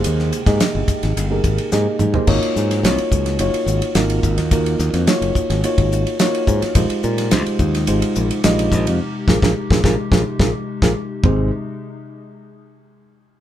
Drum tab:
CC |----------------|x---------------|----------------|----------------|
RD |x-xxx-xxx-xx----|-x-xxx-xxx-xxx-x|xx-xxx-xxx-xxx-x|xx-xxx-xxx-xxx-x|
HH |p-p-p-p-p-p-p-p-|--p-p-p-p-p-p-p-|p-p-p-p-p-p-p-p-|p-p-p-p-p-p-p-p-|
SD |-o-oo--o----o---|--ooo--o----o--o|--ooo--o----o--o|---oo--o----o---|
T2 |--------------o-|----------------|----------------|----------------|
FT |---------------o|----------------|----------------|----------------|
BD |---o--o---o-----|o-----o-------o-|o-----o--o----o-|o-----o-------o-|

CC |----------------|----------------|
RD |----------------|----------------|
HH |----------------|----------------|
SD |--oo-oo-o-o--o--|----------------|
T2 |----------------|----------------|
FT |----------------|o---------------|
BD |--oo-oo-o-o--o--|o---------------|